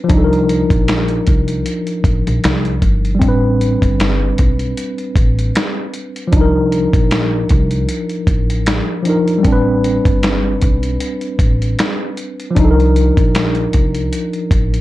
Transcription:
0.04 tine electric piano F3
0.09 upright bass C2, tine electric piano D4, kick, closed hi-hat
0.13 tine electric piano D#4
0.18 tine electric piano A4
0.24 tine electric piano A#4
0.33 closed hi-hat
0.49 closed hi-hat
0.70 upright bass A#1, kick, closed hi-hat
0.88 finger snap, snare, closed hi-hat
1.08 closed hi-hat
1.27 upright bass C2, kick, closed hi-hat
1.48 closed hi-hat
1.66 closed hi-hat
1.87 closed hi-hat
2.04 upright bass A1, kick, closed hi-hat
2.27 upright bass A#1, closed hi-hat
2.44 upright bass C2, finger snap, snare, closed hi-hat
2.65 closed hi-hat
2.82 upright bass G1, kick, closed hi-hat
3.05 closed hi-hat
3.15 tine electric piano G3
3.19 upright bass A1, tine electric piano C4, kick, closed hi-hat
3.24 tine electric piano D4
3.28 tine electric piano B4
3.61 closed hi-hat
3.82 upright bass G1, kick, closed hi-hat
4.00 finger snap, snare, closed hi-hat
4.38 upright bass B1, kick, closed hi-hat
4.59 closed hi-hat
4.77 closed hi-hat
4.98 closed hi-hat
5.16 upright bass A1, kick, closed hi-hat
5.39 closed hi-hat
5.55 finger snap, snare, closed hi-hat
5.94 closed hi-hat
6.16 closed hi-hat
6.27 tine electric piano F3
6.32 upright bass C2, tine electric piano D4, kick, closed hi-hat
6.37 tine electric piano D#4
6.41 tine electric piano A#4
6.72 closed hi-hat
6.93 upright bass A#1, kick, closed hi-hat
7.11 finger snap, snare, closed hi-hat
7.49 upright bass C2, kick, closed hi-hat
7.71 closed hi-hat
7.89 closed hi-hat
8.09 closed hi-hat
8.27 upright bass A1, kick, closed hi-hat
8.50 closed hi-hat
8.66 finger snap, snare, closed hi-hat
9.03 tine electric piano F3 D4, closed hi-hat
9.07 tine electric piano D#4 A#4
9.28 closed hi-hat
9.38 tine electric piano G3
9.43 upright bass A1, tine electric piano C4, kick, closed hi-hat
9.48 tine electric piano D4
9.52 tine electric piano B4
9.84 closed hi-hat
10.05 upright bass G1, kick, closed hi-hat
10.23 finger snap, snare, closed hi-hat
10.62 upright bass B1, kick, closed hi-hat
10.83 closed hi-hat
11.00 closed hi-hat
11.21 closed hi-hat
11.39 upright bass A1, kick, closed hi-hat
11.62 closed hi-hat
11.79 finger snap, snare, closed hi-hat
12.17 closed hi-hat
12.40 closed hi-hat
12.51 tine electric piano F3
12.55 upright bass C2, tine electric piano D4, kick, closed hi-hat
12.60 tine electric piano D#4
12.64 tine electric piano A4
12.71 tine electric piano A#4
12.80 closed hi-hat
12.96 closed hi-hat
13.17 upright bass A#1, kick, closed hi-hat
13.35 finger snap, snare, closed hi-hat
13.55 closed hi-hat
13.73 upright bass C2, kick, closed hi-hat
13.95 closed hi-hat
14.13 closed hi-hat
14.33 closed hi-hat
14.51 upright bass A1, kick, closed hi-hat
14.74 closed hi-hat

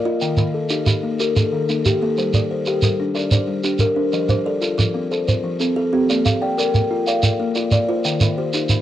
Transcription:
Already playing: kalimba A#4 D5
0.05 kalimba F4 D#5
0.21 kalimba D#3 G5, shekere
0.37 kalimba D#3 A#4, shekere
0.54 kalimba A4
0.70 kalimba D#4 G4, shekere
0.87 kalimba D#3 G4, shekere
1.03 kalimba A#3
1.20 kalimba G4 A#4, shekere
1.36 kalimba A4 A#4, shekere
1.52 kalimba D#3
1.69 kalimba A#3 D#4, shekere
1.85 kalimba G4, shekere
2.01 kalimba A#3 A4
2.17 kalimba G3 C5, shekere
2.33 kalimba G3 D5, shekere
2.51 kalimba C5
2.66 kalimba G4 A#4, shekere
2.82 kalimba G3 A#4, shekere
2.99 kalimba D4
3.14 kalimba A#4 D5, shekere
3.31 kalimba C5 D5, shekere
3.47 kalimba G3
3.63 kalimba D4 G4, shekere
3.79 kalimba A#4, shekere
3.96 kalimba D4 C5
4.13 kalimba F3 D#5, shekere
4.29 kalimba F3 C5, shekere
4.46 kalimba A4 D5
4.62 kalimba F4 A4, shekere
4.78 kalimba F3, shekere
4.95 kalimba C4
5.11 kalimba A4 C5, shekere
5.28 kalimba C5, shekere
5.44 kalimba F3
5.60 kalimba C4 A4, shekere
5.76 kalimba A4
5.93 kalimba C4 G4
6.10 kalimba A#3 D5, shekere
6.25 kalimba A#3 F5, shekere
6.42 kalimba D5 G5
6.58 kalimba A#4 D5, shekere
6.74 kalimba A#3, shekere
6.91 kalimba F4
7.07 kalimba D5 F5, shekere
7.23 kalimba F5, shekere
7.39 kalimba A#3
7.55 kalimba F4 D5, shekere
7.71 kalimba D5, shekere
7.88 kalimba F4 C5
8.04 kalimba D#3 G5, shekere
8.20 kalimba D#3 A#4, shekere
8.37 kalimba G4 C5
8.53 kalimba D#4 G4, shekere
8.69 kalimba D#3, shekere

